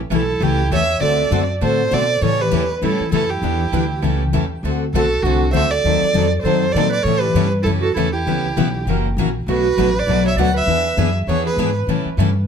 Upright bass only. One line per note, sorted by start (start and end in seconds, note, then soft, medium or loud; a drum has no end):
0.10 0.39 B1 medium
0.40 0.70 C#2 medium
0.70 1.00 E2 medium
1.01 1.30 D2 medium
1.30 1.60 F#2 medium
1.61 1.90 A2 medium
1.91 2.21 B2 medium
2.21 2.51 A2 medium
2.51 2.81 E2 medium
2.82 2.98 G2 medium
2.99 muted upright bass stroke soft
3.11 3.41 F#2 medium
3.41 3.71 E2 medium
3.72 4.01 D2 medium
4.02 4.32 C#2 medium
4.33 4.62 E2 medium
4.63 4.92 D2 medium
4.93 5.22 B1 medium
5.22 5.52 C2 medium
5.53 5.83 D2 medium
5.84 6.01 D#2 medium
6.02 muted upright bass stroke soft
6.13 6.43 F2 medium
6.43 6.73 F#2 medium
6.74 7.03 A#2 medium
7.04 7.33 A2 medium
7.34 7.64 G2 medium
7.64 7.94 F#2 medium
7.96 8.25 E2 medium
8.26 8.55 C#2 medium
8.56 8.85 B1 medium
8.86 9.15 F#1 medium
9.17 9.46 A#1 medium
9.46 9.76 B1 medium
9.77 10.06 A1 medium
10.07 10.35 B1 medium
10.36 10.66 D2 medium
10.66 10.96 E2 medium
10.97 11.26 F#2 medium
11.27 11.56 E2 medium
11.56 11.86 G#2 medium
11.87 12.04 A2 medium
12.05 muted upright bass stroke soft
12.17 12.47 G2 medium